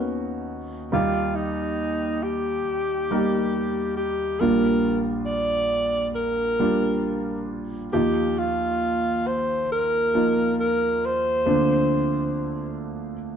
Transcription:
Already playing: grand piano D#2 D#3 B3 C#4 D#4 F#4
0.92 grand piano D#2 D#3 G3 A#3 D#4 G4, alto saxophone F4
1.35 alto saxophone D#4
2.23 alto saxophone G4
3.11 grand piano G3 A#3 D#4 A#4
3.97 alto saxophone G4
4.40 grand piano A#1 A#2 G3 A#3 D4 F4, alto saxophone A#4
5.25 alto saxophone D5
6.15 alto saxophone A#4
6.59 grand piano G3 A#3 D4 F4
7.93 grand piano D#2 F3 A#3 D#4 F4, alto saxophone G4
8.39 alto saxophone F4
9.27 alto saxophone C5
9.72 alto saxophone A#4
10.14 grand piano F3 A#3 D#4 F4
10.60 alto saxophone A#4
11.05 alto saxophone C5
11.46 grand piano D2 D3 F3 A#3 C4 D4

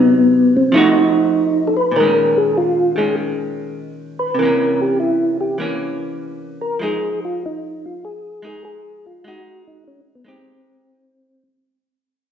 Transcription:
Already playing: hollow-body jazz guitar C3 F#3 D#4, tonewheel organ B3
0.57 tonewheel organ C4
0.72 hollow-body jazz guitar F3 A3 D#4, tonewheel organ D#4
0.77 hollow-body jazz guitar F#4
1.68 tonewheel organ A4
1.77 tonewheel organ B4
1.92 hollow-body jazz guitar A#2
1.96 hollow-body jazz guitar D#3, tonewheel organ A#4
2.00 hollow-body jazz guitar G#3 C#4
2.38 tonewheel organ G#4
2.58 tonewheel organ F4
2.96 hollow-body jazz guitar D#3 G#3 C#4, tonewheel organ G#4
4.19 tonewheel organ B4
4.35 hollow-body jazz guitar C3
4.39 hollow-body jazz guitar E3 A#3, tonewheel organ A#4
4.45 hollow-body jazz guitar C#4
4.81 tonewheel organ G4
5.00 tonewheel organ E4
5.41 tonewheel organ G4
5.58 hollow-body jazz guitar E3 A#3 C#4
6.62 tonewheel organ A#4
6.79 hollow-body jazz guitar F3 G#3 D#4
6.84 tonewheel organ G#4
7.25 tonewheel organ F4
7.46 tonewheel organ D#4
7.86 tonewheel organ F4
8.05 tonewheel organ G#4
8.42 hollow-body jazz guitar G#3 D#4
8.47 tonewheel organ G#4
8.65 tonewheel organ G#4
9.07 tonewheel organ F4
9.24 hollow-body jazz guitar G#3 D#4, tonewheel organ F#4
9.67 tonewheel organ D#4
9.88 tonewheel organ C#4
10.15 tonewheel organ B3
10.25 hollow-body jazz guitar G#3 D#4 G4, tonewheel organ C4

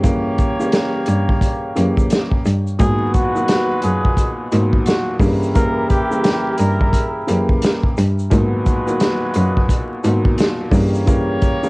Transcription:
Already playing: cello G2, trumpet section A#3 G4 C#5
0.03 upright piano C#3 E3 G3 A#3, kick, closed hi-hat, shaker
0.38 kick, closed hi-hat, shaker
0.59 upright piano C#3 E3 G3 A#3, shaker
0.72 snare, closed hi-hat, shaker
1.06 cello G2, closed hi-hat, shaker
1.29 kick
1.41 kick, closed hi-hat, shaker
1.75 cello F#2, upright piano C#3 E3 A#3 G4, closed hi-hat, shaker
1.97 kick, shaker
2.10 snare, closed hi-hat, shaker
2.31 kick
2.45 cello G2, closed hi-hat, shaker
2.67 shaker
2.78 cello G#2, upright piano A#2 B2 D#3 F#3, trumpet section G#3 F#4 B4, muted trumpet G#4, kick, closed hi-hat, shaker
3.14 muted trumpet F#4, kick, closed hi-hat, shaker
3.35 upright piano A#2 B2 D#3 F#3, shaker
3.48 snare, closed hi-hat, shaker
3.82 cello F#2, muted trumpet G#4, closed hi-hat, shaker
4.05 kick
4.17 kick, closed hi-hat, shaker
4.51 cello G#2, upright piano A#2 B2 D#3 F#3, closed hi-hat, shaker
4.73 kick
4.86 muted trumpet F#4, snare, closed hi-hat, shaker
5.20 cello G2, upright piano C#3 E3 G3 A#3, trumpet section E4 G4 A#4, kick, open hi-hat, shaker
5.43 shaker
5.55 upright piano C#3 E3 G3 A#3, muted trumpet A#4, kick, closed hi-hat, shaker
5.90 muted trumpet G4, kick, closed hi-hat, shaker
6.11 upright piano C#3 E3 G3 A#3, shaker
6.24 snare, closed hi-hat, shaker
6.58 cello G2, muted trumpet A#4, closed hi-hat, shaker
6.81 kick
6.93 kick, closed hi-hat, shaker
7.27 cello F#2, upright piano C#3 E3 A#3 G4, closed hi-hat, shaker
7.49 kick
7.62 snare, closed hi-hat, shaker
7.83 kick
7.97 cello G2, closed hi-hat, shaker
8.19 shaker
8.30 cello G#2, upright piano A#2 B2 D#3 F#3, trumpet section G#3 F#4 B4, kick, closed hi-hat, shaker
8.66 kick, closed hi-hat, shaker
8.86 upright piano A#2 B2 D#3 F#3, shaker
9.00 snare, closed hi-hat, shaker
9.34 cello F#2, closed hi-hat, shaker
9.57 kick
9.69 kick, closed hi-hat, shaker
10.03 cello G#2, upright piano A#2 B2 D#3 F#3, closed hi-hat, shaker
10.25 kick
10.38 snare, closed hi-hat, shaker
10.71 cello G2, upright piano C#3 E3 G3 A#3, trumpet section A#3 G4 C#5, kick, open hi-hat, shaker
10.95 shaker
11.06 upright piano C#3 E3 G3 A#3, kick, closed hi-hat, shaker
11.42 kick, closed hi-hat, shaker
11.63 upright piano C#3 E3 G3 A#3, shaker

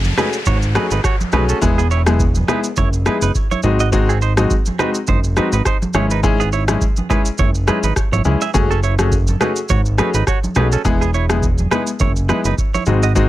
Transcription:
Already playing: analog synth bass F#1, downlifter
0.04 high conga, shaker
0.17 grand piano A3 C#4 F#4 G#4, clean electric guitar D#4 B4, cross-stick, low conga, shaker
0.33 shaker
0.46 analog synth bass G#1, clean electric guitar F#4 C#5, kick, low conga, shaker
0.62 shaker
0.75 grand piano A3 C#4 F#4 G#4, clean electric guitar D#4 B4, cross-stick, high conga, shaker
0.91 analog synth bass G#1, clean electric guitar D#4 B4, shaker
1.04 clean electric guitar F#4 C#5, kick, cross-stick, shaker
1.21 high conga, shaker
1.32 analog synth bass B1, grand piano A3 C#4 F#4 G#4, clean electric guitar D#4 B4, cross-stick, high conga, low conga, shaker
1.49 clean electric guitar C#4 A4, shaker
1.61 analog synth bass E1, grand piano G#3 B3 E4 G#4, kick, low conga, shaker
1.78 clean electric guitar B3 G#4, shaker
1.91 clean electric guitar E4 C#5, shaker
2.06 grand piano G#3 B3 E4 G#4, cross-stick, high conga, shaker
2.19 kick, shaker
2.35 high conga, shaker
2.48 grand piano G#3 B3 E4 G#4, clean electric guitar D#4 B4, cross-stick, low conga, shaker
2.64 shaker
2.76 analog synth bass F#1, clean electric guitar E4 C#5, kick, low conga, shaker
2.93 shaker
3.06 grand piano G#3 B3 E4 G#4, clean electric guitar D#4 B4, cross-stick, high conga, shaker
3.22 analog synth bass F#1, clean electric guitar D#4 B4, shaker
3.35 kick, shaker
3.51 clean electric guitar E4 C#5, high conga, shaker
3.63 analog synth bass G#1, grand piano G#3 C4 D#4 F#4, high conga, low conga, shaker
3.80 clean electric guitar F#4 D#5, shaker
3.92 grand piano G#3 C4 D#4 F#4, kick, low conga, shaker
4.09 clean electric guitar C4 G#4, shaker
4.22 clean electric guitar D#4 C5, shaker
4.37 grand piano G#3 C4 D#4 F#4, cross-stick, high conga, shaker
4.50 kick, shaker
4.66 high conga, shaker
4.79 grand piano G#3 C4 D#4 F#4, clean electric guitar D#4 B4, cross-stick, low conga, shaker
4.95 shaker
5.07 analog synth bass F#1, clean electric guitar D#4 C5, kick, low conga, shaker
5.24 shaker
5.36 grand piano G#3 C4 D#4 F#4, clean electric guitar D#4 B4, cross-stick, high conga, shaker
5.52 analog synth bass G#1, clean electric guitar D#4 B4, shaker
5.65 clean electric guitar D#4 C5, kick, cross-stick, shaker
5.82 high conga, shaker
5.94 analog synth bass G#1, grand piano G#3 C#4 E4 G#4, clean electric guitar E4 C#5, cross-stick, high conga, low conga, shaker
6.11 clean electric guitar D#4 B4, shaker
6.23 grand piano G#3 C#4 E4 G#4, kick, low conga, shaker
6.40 clean electric guitar B3 G#4, shaker
6.53 clean electric guitar E4 C#5, shaker
6.68 grand piano G#3 C#4 E4 G#4, cross-stick, high conga, shaker
6.81 kick, shaker
6.97 high conga, shaker
7.09 grand piano G#3 C#4 E4 G#4, clean electric guitar D#4 B4, kick, low conga, shaker
7.25 shaker
7.38 analog synth bass F#1, clean electric guitar E4 C#5, kick, low conga, shaker
7.55 shaker
7.67 grand piano G#3 C#4 E4 G#4, clean electric guitar D#4 B4, cross-stick, high conga, shaker
7.83 analog synth bass G#1, clean electric guitar D#4 B4, shaker
7.96 kick, cross-stick, shaker
8.12 analog synth bass G#1, clean electric guitar E4 C#5, high conga, shaker
8.24 analog synth bass C#2, grand piano G#3 C#4 E4 G#4, high conga, low conga, shaker
8.41 clean electric guitar G#4 E5, shaker
8.54 analog synth bass F#1, grand piano A3 C#4 F#4 G#4, kick, low conga, shaker
8.71 clean electric guitar C#4 A4, shaker
8.83 clean electric guitar E4 C#5, shaker
8.98 grand piano A3 C#4 F#4 G#4, cross-stick, high conga, shaker
9.12 kick, shaker
9.27 high conga, shaker
9.40 grand piano A3 C#4 F#4 G#4, clean electric guitar D#4 B4, cross-stick, low conga, shaker
9.56 shaker
9.69 analog synth bass G#1, clean electric guitar F#4 C#5, kick, low conga, shaker
9.86 shaker
9.98 grand piano A3 C#4 F#4 G#4, clean electric guitar D#4 B4, cross-stick, high conga, shaker
10.14 analog synth bass G#1, clean electric guitar D#4 B4, shaker
10.27 clean electric guitar F#4 C#5, kick, cross-stick, shaker
10.44 high conga, shaker
10.55 analog synth bass B1, grand piano A3 C#4 F#4 G#4, clean electric guitar D#4 B4, cross-stick, high conga, low conga, shaker
10.72 clean electric guitar C#4 A4, shaker
10.85 analog synth bass E1, grand piano G#3 B3 E4 G#4, kick, low conga, shaker
11.01 clean electric guitar B3 G#4, shaker
11.14 clean electric guitar E4 C#5, shaker
11.29 grand piano G#3 B3 E4 G#4, cross-stick, high conga, shaker
11.42 kick, shaker
11.58 high conga, shaker
11.71 grand piano G#3 B3 E4 G#4, clean electric guitar D#4 B4, cross-stick, low conga, shaker
11.87 shaker
11.99 analog synth bass F#1, clean electric guitar E4 C#5, kick, low conga, shaker
12.16 shaker
12.29 grand piano G#3 B3 E4 G#4, clean electric guitar D#4 B4, cross-stick, high conga, shaker
12.45 analog synth bass F#1, clean electric guitar D#4 B4, shaker
12.58 kick, shaker
12.74 clean electric guitar E4 C#5, high conga, shaker
12.86 analog synth bass G#1, grand piano G#3 C4 D#4 F#4, high conga, low conga, shaker
13.03 clean electric guitar F#4 D#5, shaker
13.15 grand piano G#3 C4 D#4 F#4, kick, low conga, shaker

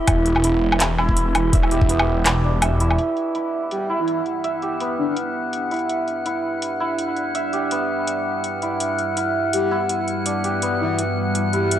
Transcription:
Already playing: santur B3 E4 G4 E5, synth drone E4
0.07 detuned saw bass E1, kick, closed hi-hat, low woodblock
0.26 closed hi-hat
0.36 low woodblock
0.44 santur E4, closed hi-hat
0.72 low woodblock
0.80 detuned saw bass E1, clap, closed hi-hat
0.98 santur E4, low woodblock
1.09 kick
1.17 closed hi-hat
1.35 closed hi-hat, low woodblock
1.53 santur E5, kick, closed hi-hat
1.63 low woodblock
1.71 santur G4, closed hi-hat
1.81 kick
1.89 detuned saw bass E1, santur B3, closed hi-hat
1.99 low woodblock
2.26 clap, closed hi-hat, low woodblock
2.44 detuned saw bass E1, santur D4
2.62 santur E5, closed hi-hat, low woodblock
2.80 santur E4, closed hi-hat
2.91 low woodblock
2.98 ambient pad G3 E4 B4 F#5, synth drone F#5, closed hi-hat
3.17 closed hi-hat
3.35 santur E4, closed hi-hat
3.71 soft synth lead G4, closed hi-hat
3.90 santur E4
4.00 soft synth lead E4
4.08 closed hi-hat
4.26 closed hi-hat
4.44 santur E5, closed hi-hat
4.62 santur G4, closed hi-hat
4.80 santur B3, closed hi-hat
4.99 soft synth lead D4
5.09 soft synth lead D4
5.17 closed hi-hat
5.53 closed hi-hat
5.71 santur E4, closed hi-hat
5.74 closed hi-hat
5.76 closed hi-hat
5.79 closed hi-hat
5.89 ambient pad D5, closed hi-hat
6.08 closed hi-hat
6.26 santur E4, closed hi-hat
6.62 closed hi-hat
6.80 santur E4
6.99 closed hi-hat
7.17 closed hi-hat
7.35 santur E5, closed hi-hat
7.53 santur G4, closed hi-hat
7.71 santur B3, closed hi-hat
8.07 closed hi-hat
8.44 closed hi-hat
8.62 santur E4, closed hi-hat
8.80 ambient pad B4, closed hi-hat
8.99 closed hi-hat
9.17 santur E4, closed hi-hat
9.53 soft synth lead G4, closed hi-hat
9.71 santur E4
9.89 closed hi-hat
10.08 closed hi-hat
10.26 santur D4, closed hi-hat
10.44 santur G4, closed hi-hat
10.62 santur B3, closed hi-hat
10.80 soft synth lead E4
10.99 closed hi-hat
11.35 closed hi-hat
11.53 santur E4, soft synth lead G4, closed hi-hat
11.71 closed hi-hat

